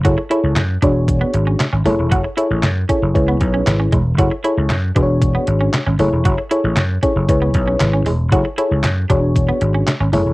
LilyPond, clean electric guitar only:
\new Staff \with { instrumentName = "Clean electric guitar" } { \time 4/4 \key fis \minor \tempo 4 = 116 fis'16 r16 e'16 r8. d'16 r8 b16 r16 cis'16 r16 cis'16 a16 r16 | fis'16 r16 e'16 r8. cis'16 r8 b16 r16 cis'16 r16 cis'16 gis16 r16 | fis'16 r16 e'16 r8. d'16 r8 b16 r16 cis'16 r16 cis'16 a16 r16 | fis'16 r16 e'16 r8. cis'16 r8 b16 r16 cis'16 r16 cis'16 gis16 r16 |
fis'16 r16 e'16 r8. d'16 r8 b16 r16 cis'16 r16 cis'16 a16 r16 | }